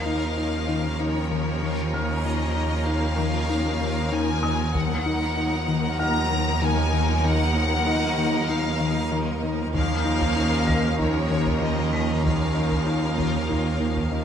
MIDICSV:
0, 0, Header, 1, 11, 480
1, 0, Start_track
1, 0, Tempo, 625000
1, 1725, Time_signature, 4, 2, 24, 8
1, 10939, End_track
2, 0, Start_track
2, 0, Title_t, "Felt piano"
2, 0, Program_c, 0, 0
2, 0, Control_c, 0, 64, 127
2, 0, Note_on_c, 0, 80, 31
2, 978, Note_off_c, 0, 80, 0
2, 1489, Note_on_c, 0, 89, 34
2, 2896, Note_off_c, 0, 89, 0
2, 3401, Note_on_c, 0, 87, 50
2, 3660, Control_c, 0, 64, 0
2, 3776, Control_c, 0, 64, 127
2, 4602, Note_on_c, 0, 78, 40
2, 4603, Note_on_c, 0, 89, 43
2, 4812, Note_off_c, 0, 87, 0
2, 6013, Note_off_c, 0, 78, 0
2, 6013, Note_off_c, 0, 89, 0
2, 7501, Control_c, 0, 64, 0
2, 7617, Control_c, 0, 64, 127
2, 8194, Note_on_c, 0, 94, 39
2, 8199, Note_on_c, 0, 70, 34
2, 9162, Note_on_c, 0, 95, 32
2, 9609, Note_off_c, 0, 94, 0
2, 9611, Note_off_c, 0, 70, 0
2, 10573, Note_off_c, 0, 95, 0
2, 10939, End_track
3, 0, Start_track
3, 0, Title_t, "Violin section"
3, 0, Program_c, 1, 48
3, 0, Note_on_c, 1, 77, 59
3, 748, Note_off_c, 1, 77, 0
3, 771, Note_on_c, 1, 73, 55
3, 1719, Note_on_c, 1, 75, 58
3, 1728, Note_off_c, 1, 73, 0
3, 2192, Note_off_c, 1, 75, 0
3, 2197, Note_on_c, 1, 77, 66
3, 3161, Note_off_c, 1, 77, 0
3, 3161, Note_on_c, 1, 80, 77
3, 3643, Note_off_c, 1, 80, 0
3, 3645, Note_on_c, 1, 78, 67
3, 4604, Note_on_c, 1, 82, 86
3, 4605, Note_off_c, 1, 78, 0
3, 5075, Note_off_c, 1, 82, 0
3, 5091, Note_on_c, 1, 80, 83
3, 5568, Note_off_c, 1, 80, 0
3, 5571, Note_on_c, 1, 78, 90
3, 6524, Note_on_c, 1, 77, 75
3, 6528, Note_off_c, 1, 78, 0
3, 7004, Note_off_c, 1, 77, 0
3, 7486, Note_on_c, 1, 77, 79
3, 8415, Note_off_c, 1, 77, 0
3, 8453, Note_on_c, 1, 73, 63
3, 8929, Note_off_c, 1, 73, 0
3, 8930, Note_on_c, 1, 75, 52
3, 9407, Note_off_c, 1, 75, 0
3, 9407, Note_on_c, 1, 77, 54
3, 10939, Note_off_c, 1, 77, 0
3, 10939, End_track
4, 0, Start_track
4, 0, Title_t, "Synth texture"
4, 0, Program_c, 2, 99
4, 0, Note_on_c, 2, 65, 56
4, 0, Note_on_c, 2, 73, 56
4, 0, Note_on_c, 2, 82, 52
4, 3617, Note_off_c, 2, 65, 0
4, 3617, Note_off_c, 2, 82, 0
4, 3637, Note_on_c, 2, 75, 57
4, 3638, Note_on_c, 2, 82, 61
4, 3645, Note_on_c, 2, 63, 64
4, 3648, Note_off_c, 2, 73, 0
4, 7451, Note_off_c, 2, 82, 0
4, 7454, Note_off_c, 2, 63, 0
4, 7481, Note_off_c, 2, 75, 0
4, 7482, Note_on_c, 2, 73, 59
4, 7485, Note_on_c, 2, 65, 63
4, 7488, Note_on_c, 2, 70, 57
4, 10939, Note_off_c, 2, 65, 0
4, 10939, Note_off_c, 2, 70, 0
4, 10939, Note_off_c, 2, 73, 0
4, 10939, End_track
5, 0, Start_track
5, 0, Title_t, "Violin section"
5, 0, Program_c, 3, 48
5, 0, Note_on_c, 3, 63, 40
5, 0, Note_on_c, 3, 70, 43
5, 252, Note_off_c, 3, 63, 0
5, 286, Note_on_c, 3, 61, 45
5, 3617, Note_off_c, 3, 70, 0
5, 3639, Note_on_c, 3, 70, 61
5, 3641, Note_on_c, 3, 63, 56
5, 3646, Note_off_c, 3, 61, 0
5, 7451, Note_off_c, 3, 70, 0
5, 7452, Note_off_c, 3, 63, 0
5, 7478, Note_on_c, 3, 70, 58
5, 7482, Note_on_c, 3, 61, 59
5, 8411, Note_off_c, 3, 70, 0
5, 8413, Note_off_c, 3, 61, 0
5, 8443, Note_on_c, 3, 70, 51
5, 8446, Note_on_c, 3, 61, 51
5, 9385, Note_off_c, 3, 70, 0
5, 9386, Note_off_c, 3, 61, 0
5, 9406, Note_on_c, 3, 61, 43
5, 9407, Note_on_c, 3, 70, 45
5, 10939, Note_off_c, 3, 61, 0
5, 10939, Note_off_c, 3, 70, 0
5, 10939, End_track
6, 0, Start_track
6, 0, Title_t, "Viola section"
6, 0, Program_c, 4, 48
6, 0, Note_on_c, 4, 53, 45
6, 0, Note_on_c, 4, 58, 41
6, 3617, Note_off_c, 4, 53, 0
6, 3617, Note_off_c, 4, 58, 0
6, 3650, Note_on_c, 4, 58, 57
6, 3652, Note_on_c, 4, 53, 54
6, 7457, Note_off_c, 4, 58, 0
6, 7458, Note_off_c, 4, 53, 0
6, 7482, Note_on_c, 4, 58, 59
6, 7483, Note_on_c, 4, 53, 62
6, 8413, Note_off_c, 4, 53, 0
6, 8413, Note_off_c, 4, 58, 0
6, 8445, Note_on_c, 4, 53, 50
6, 8445, Note_on_c, 4, 58, 49
6, 9386, Note_off_c, 4, 53, 0
6, 9386, Note_off_c, 4, 58, 0
6, 9411, Note_on_c, 4, 53, 43
6, 9414, Note_on_c, 4, 58, 45
6, 10939, Note_off_c, 4, 53, 0
6, 10939, Note_off_c, 4, 58, 0
6, 10939, End_track
7, 0, Start_track
7, 0, Title_t, "Analog synth bass"
7, 0, Program_c, 5, 38
7, 47, Note_on_c, 5, 63, 47
7, 190, Note_off_c, 5, 63, 0
7, 289, Note_on_c, 5, 63, 49
7, 432, Note_off_c, 5, 63, 0
7, 528, Note_on_c, 5, 51, 64
7, 671, Note_off_c, 5, 51, 0
7, 768, Note_on_c, 5, 63, 54
7, 911, Note_off_c, 5, 63, 0
7, 1009, Note_on_c, 5, 51, 53
7, 1151, Note_off_c, 5, 51, 0
7, 1249, Note_on_c, 5, 51, 76
7, 1392, Note_off_c, 5, 51, 0
7, 1488, Note_on_c, 5, 51, 48
7, 1631, Note_off_c, 5, 51, 0
7, 1729, Note_on_c, 5, 51, 67
7, 1872, Note_off_c, 5, 51, 0
7, 1968, Note_on_c, 5, 63, 53
7, 2111, Note_off_c, 5, 63, 0
7, 2202, Note_on_c, 5, 63, 48
7, 2347, Note_off_c, 5, 63, 0
7, 2445, Note_on_c, 5, 51, 70
7, 2589, Note_off_c, 5, 51, 0
7, 2685, Note_on_c, 5, 63, 59
7, 2829, Note_off_c, 5, 63, 0
7, 2927, Note_on_c, 5, 51, 57
7, 3070, Note_off_c, 5, 51, 0
7, 3166, Note_on_c, 5, 51, 74
7, 3309, Note_off_c, 5, 51, 0
7, 3406, Note_on_c, 5, 51, 56
7, 3550, Note_off_c, 5, 51, 0
7, 3645, Note_on_c, 5, 51, 69
7, 3789, Note_off_c, 5, 51, 0
7, 3887, Note_on_c, 5, 63, 51
7, 4030, Note_off_c, 5, 63, 0
7, 4125, Note_on_c, 5, 63, 49
7, 4269, Note_off_c, 5, 63, 0
7, 4366, Note_on_c, 5, 51, 76
7, 4509, Note_off_c, 5, 51, 0
7, 4602, Note_on_c, 5, 63, 59
7, 4747, Note_off_c, 5, 63, 0
7, 4840, Note_on_c, 5, 51, 57
7, 4986, Note_off_c, 5, 51, 0
7, 5084, Note_on_c, 5, 51, 82
7, 5228, Note_off_c, 5, 51, 0
7, 5321, Note_on_c, 5, 51, 52
7, 5466, Note_off_c, 5, 51, 0
7, 5563, Note_on_c, 5, 51, 78
7, 5708, Note_off_c, 5, 51, 0
7, 5804, Note_on_c, 5, 63, 48
7, 5948, Note_off_c, 5, 63, 0
7, 6041, Note_on_c, 5, 63, 55
7, 6186, Note_off_c, 5, 63, 0
7, 6281, Note_on_c, 5, 51, 82
7, 6426, Note_off_c, 5, 51, 0
7, 6523, Note_on_c, 5, 63, 58
7, 6667, Note_off_c, 5, 63, 0
7, 6764, Note_on_c, 5, 51, 53
7, 6908, Note_off_c, 5, 51, 0
7, 7001, Note_on_c, 5, 51, 83
7, 7146, Note_off_c, 5, 51, 0
7, 7240, Note_on_c, 5, 51, 52
7, 7385, Note_off_c, 5, 51, 0
7, 7480, Note_on_c, 5, 51, 72
7, 7625, Note_off_c, 5, 51, 0
7, 7717, Note_on_c, 5, 63, 53
7, 7864, Note_off_c, 5, 63, 0
7, 7959, Note_on_c, 5, 63, 49
7, 8104, Note_off_c, 5, 63, 0
7, 8196, Note_on_c, 5, 51, 72
7, 8343, Note_off_c, 5, 51, 0
7, 8438, Note_on_c, 5, 63, 60
7, 8584, Note_off_c, 5, 63, 0
7, 8684, Note_on_c, 5, 51, 59
7, 8828, Note_off_c, 5, 51, 0
7, 8918, Note_on_c, 5, 51, 76
7, 9064, Note_off_c, 5, 51, 0
7, 9165, Note_on_c, 5, 51, 49
7, 9309, Note_off_c, 5, 51, 0
7, 9400, Note_on_c, 5, 51, 69
7, 9545, Note_off_c, 5, 51, 0
7, 9637, Note_on_c, 5, 63, 50
7, 9783, Note_off_c, 5, 63, 0
7, 9878, Note_on_c, 5, 63, 49
7, 10024, Note_off_c, 5, 63, 0
7, 10124, Note_on_c, 5, 51, 63
7, 10269, Note_off_c, 5, 51, 0
7, 10365, Note_on_c, 5, 63, 54
7, 10509, Note_off_c, 5, 63, 0
7, 10600, Note_on_c, 5, 51, 52
7, 10746, Note_off_c, 5, 51, 0
7, 10842, Note_on_c, 5, 51, 68
7, 10939, Note_off_c, 5, 51, 0
7, 10939, End_track
8, 0, Start_track
8, 0, Title_t, "Cello section"
8, 0, Program_c, 6, 48
8, 0, Note_on_c, 6, 39, 39
8, 3618, Note_off_c, 6, 39, 0
8, 3643, Note_on_c, 6, 39, 55
8, 7453, Note_off_c, 6, 39, 0
8, 7478, Note_on_c, 6, 39, 59
8, 10939, Note_off_c, 6, 39, 0
8, 10939, End_track
9, 0, Start_track
9, 0, Title_t, "Double bass section"
9, 0, Program_c, 7, 48
9, 0, Note_on_c, 7, 39, 48
9, 3616, Note_off_c, 7, 39, 0
9, 3643, Note_on_c, 7, 39, 63
9, 7453, Note_off_c, 7, 39, 0
9, 7482, Note_on_c, 7, 39, 68
9, 10939, Note_off_c, 7, 39, 0
9, 10939, End_track
10, 0, Start_track
10, 0, Title_t, "Synth drone"
10, 0, Program_c, 8, 95
10, 0, Note_on_c, 8, 39, 59
10, 3620, Note_off_c, 8, 39, 0
10, 3641, Note_on_c, 8, 39, 64
10, 7452, Note_off_c, 8, 39, 0
10, 7487, Note_on_c, 8, 39, 62
10, 10939, Note_off_c, 8, 39, 0
10, 10939, End_track
11, 0, Start_track
11, 0, Title_t, "Taiko and cinematic ensemble drums"
11, 3647, Note_on_c, 9, 41, 59
11, 3723, Note_off_c, 9, 41, 0
11, 7484, Note_on_c, 9, 41, 76
11, 7561, Note_off_c, 9, 41, 0
11, 7840, Note_on_c, 9, 41, 63
11, 7917, Note_off_c, 9, 41, 0
11, 8204, Note_on_c, 9, 41, 70
11, 8281, Note_off_c, 9, 41, 0
11, 8448, Note_on_c, 9, 41, 64
11, 8525, Note_off_c, 9, 41, 0
11, 8809, Note_on_c, 9, 41, 62
11, 8886, Note_off_c, 9, 41, 0
11, 9411, Note_on_c, 9, 41, 82
11, 9487, Note_off_c, 9, 41, 0
11, 9767, Note_on_c, 9, 41, 59
11, 9844, Note_off_c, 9, 41, 0
11, 10130, Note_on_c, 9, 41, 59
11, 10207, Note_off_c, 9, 41, 0
11, 10370, Note_on_c, 9, 41, 55
11, 10447, Note_off_c, 9, 41, 0
11, 10728, Note_on_c, 9, 41, 55
11, 10805, Note_off_c, 9, 41, 0
11, 10939, End_track
0, 0, End_of_file